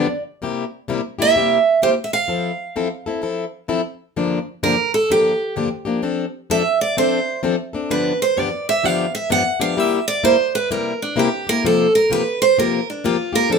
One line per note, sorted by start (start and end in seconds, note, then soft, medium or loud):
0.00 0.22 D5 medium
0.42 0.63 C3 medium
0.42 0.64 G3 medium
0.42 0.64 A#3 medium
0.42 0.64 E4 medium
0.42 0.64 G4 medium
0.88 1.00 C3 medium
0.88 1.00 G3 medium
0.88 1.01 A#3 medium
0.88 1.01 E4 medium
0.88 1.01 G4 medium
1.19 1.35 A#3 soft
1.19 1.35 E4 medium
1.19 1.34 G4 medium
1.19 1.80 E5 medium
1.36 1.57 C3 medium
1.36 1.57 G3 medium
1.36 1.58 A#3 medium
1.36 1.58 E4 medium
1.36 1.58 G4 medium
1.82 1.94 C3 medium
1.82 1.94 G3 medium
1.82 1.94 A#3 medium
1.82 1.94 E4 medium
1.82 1.94 G4 medium
1.82 1.89 C5 medium
2.04 2.13 E5 medium
2.13 3.66 F5 medium
2.28 2.50 F3 medium
2.28 2.50 C4 medium
2.28 2.51 E4 medium
2.28 2.51 A4 medium
2.76 2.87 F3 medium
2.76 2.87 C4 medium
2.76 2.88 E4 medium
2.76 2.88 A4 medium
3.06 3.21 C4 soft
3.06 3.22 E4 soft
3.06 3.22 A4 medium
3.22 3.44 F3 medium
3.22 3.44 C4 medium
3.22 3.45 E4 medium
3.22 3.44 A4 medium
3.68 3.80 F3 medium
3.68 3.81 C4 medium
3.68 3.81 E4 medium
3.68 3.81 A4 medium
4.16 4.38 G2 medium
4.16 4.38 D3 medium
4.16 4.38 F3 medium
4.16 4.38 A#3 medium
4.16 4.39 D4 medium
4.16 4.38 G4 medium
4.63 4.74 G2 medium
4.63 4.74 D3 medium
4.63 4.74 F3 medium
4.63 4.75 A#3 medium
4.63 4.75 D4 medium
4.63 4.75 G4 medium
4.63 4.92 A#4 medium
4.94 5.10 A4 medium
5.10 5.32 G2 medium
5.10 5.31 D3 medium
5.10 5.32 F3 medium
5.10 5.32 A#3 medium
5.10 5.32 D4 medium
5.10 5.54 G4 medium
5.10 5.32 G4 medium
5.56 5.68 G2 medium
5.56 5.68 D3 medium
5.56 5.68 F3 medium
5.56 5.68 A#3 medium
5.56 5.68 D4 medium
5.56 5.68 G4 medium
5.85 6.01 F3 soft
5.85 6.03 A#3 soft
5.85 6.02 D4 medium
5.85 6.02 G4 soft
6.02 6.25 F3 medium
6.02 6.25 C4 medium
6.02 6.25 D4 medium
6.02 6.25 A4 medium
6.50 6.61 F3 medium
6.50 6.62 C4 medium
6.50 6.62 D4 medium
6.50 6.62 A4 medium
6.50 6.80 E5 medium
6.81 6.97 D5 medium
6.97 7.18 F3 medium
6.97 7.19 C4 medium
6.97 7.19 D4 medium
6.97 7.19 A4 medium
6.97 7.41 C5 medium
7.43 7.55 F3 medium
7.43 7.55 C4 medium
7.43 7.55 D4 medium
7.43 7.56 A4 medium
7.73 7.90 C4 soft
7.73 7.90 D4 soft
7.73 7.89 A4 medium
7.90 8.12 G2 medium
7.90 8.12 D3 medium
7.90 8.12 F3 medium
7.90 8.12 B3 medium
7.90 8.12 D4 medium
7.90 8.12 G4 medium
7.90 8.20 B4 medium
8.22 8.39 C5 medium
8.37 8.48 G2 medium
8.37 8.49 D3 medium
8.37 8.49 F3 medium
8.37 8.49 B3 medium
8.37 8.49 D4 medium
8.37 8.49 G4 medium
8.37 8.67 D5 medium
8.69 8.85 E5 medium
8.83 9.05 G2 medium
8.83 9.05 D3 medium
8.83 9.05 F3 medium
8.83 9.06 B3 medium
8.83 9.06 D4 medium
8.83 9.06 G4 medium
8.83 9.14 F5 loud
9.15 9.30 E5 medium
9.30 9.42 G2 medium
9.30 9.42 D3 medium
9.30 9.42 F3 medium
9.30 9.42 B3 medium
9.30 9.42 D4 medium
9.30 9.42 G4 medium
9.30 9.60 F#5 medium
9.60 9.77 F3 soft
9.60 9.77 B3 soft
9.60 9.76 D4 soft
9.60 9.76 G4 soft
9.60 9.80 F5 medium
9.77 9.99 C3 medium
9.77 9.99 G3 medium
9.77 9.99 A#3 medium
9.77 9.99 E4 medium
9.77 9.99 G4 medium
9.77 10.07 E5 medium
10.08 10.23 D5 loud
10.23 10.35 C3 medium
10.23 10.35 G3 medium
10.23 10.35 A#3 medium
10.23 10.35 E4 medium
10.23 10.35 G4 medium
10.23 10.53 C5 medium
10.55 10.71 B4 medium
10.71 10.92 C3 medium
10.71 10.92 G3 medium
10.71 10.92 A#3 medium
10.71 10.92 E4 medium
10.71 10.93 G4 medium
10.71 11.00 A#4 medium
11.02 11.18 D4 medium
11.16 11.28 C3 medium
11.16 11.28 G3 medium
11.16 11.28 A#3 medium
11.16 11.29 E4 medium
11.16 11.29 G4 medium
11.16 11.47 G4 medium
11.47 11.64 A#3 soft
11.47 11.64 E4 soft
11.47 11.63 G4 medium
11.47 11.64 A#4 medium
11.65 11.86 C3 medium
11.65 11.86 F3 medium
11.65 11.86 A#3 medium
11.65 11.86 F4 medium
11.65 11.87 G4 medium
11.65 11.94 A4 medium
11.95 12.11 A#4 medium
12.10 12.22 C3 medium
12.10 12.22 F3 medium
12.10 12.22 A#3 medium
12.10 12.23 F4 medium
12.10 12.23 G4 medium
12.10 12.41 B4 medium
12.42 12.57 C5 medium
12.58 12.79 C3 medium
12.58 12.79 F3 medium
12.58 12.80 A#3 medium
12.58 12.80 F4 medium
12.58 12.80 G4 medium
12.58 12.87 A#4 medium
12.90 13.05 D4 soft
13.04 13.16 C3 medium
13.04 13.16 F3 medium
13.04 13.16 A#3 loud
13.04 13.16 F4 medium
13.04 13.34 F4 medium
13.04 13.16 G4 loud
13.33 13.50 A#3 soft
13.33 13.50 F4 soft
13.33 13.49 G4 medium
13.33 13.51 A#4 loud
13.50 13.59 F3 medium
13.50 13.59 C4 medium
13.50 13.59 D4 medium
13.50 13.59 A4 medium